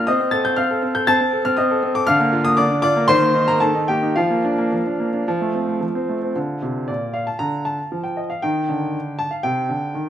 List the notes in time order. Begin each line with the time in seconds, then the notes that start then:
0.07 C4 D#5 D#6
0.20 C4
0.31 A4 A6
0.45 C4 G6
0.56 C4 F5 F6
0.71 A4
0.82 C4
0.95 A4 G6
1.07 C4 A5 A6
1.21 C4
1.33 A4
1.45 C4 F6
1.57 C4 D#5 D#6
1.71 A4
1.83 C4
1.95 A4 D6
2.07 D3 F5 F6
2.20 A#3
2.33 F4
2.45 A#3 D#6
2.57 D3 D5 D6
2.71 D4
2.82 F4 D5 D6
2.96 A#3
3.08 D#3 C5 C6
3.22 A#3
3.35 D#4
3.48 A#3 A#5
3.60 D#3 A4 A5
3.75 D#4
3.88 A#3 G4 G5
4.03 D#4
4.16 F3 F4 F5
4.30 A#3
4.45 D4
4.58 A#3
4.72 F3
4.86 D4
5.00 A#3
5.13 D4
5.28 F3
5.41 A3
5.55 C4
5.68 A3
5.81 F3
5.95 C4
6.09 A3
6.23 C4
6.35 D3 F4
6.62 C3
6.88 A#2 D5
7.14 F5
7.27 A5
7.39 D3 A#5
7.65 A5
7.92 F3
8.04 G5
8.17 D#5
8.30 F5
8.42 D#3 D#4 G5
8.69 D3
9.19 A5
9.31 F5
9.43 C3 G5
9.69 D3
9.95 D#3